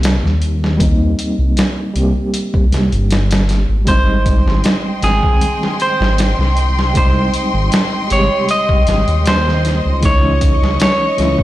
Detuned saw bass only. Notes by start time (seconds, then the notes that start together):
Already playing: C2
0.23 D#2
1.39 C2
1.95 C2
2.72 C2
2.92 G1
3.69 G#1
4.46 G#1
5.03 G#1
6.00 G#1
6.38 C2
7.54 G#1
8.11 G#1
8.88 G#1
9.08 D#2
9.85 C#2
10.62 C#2
11.19 C#2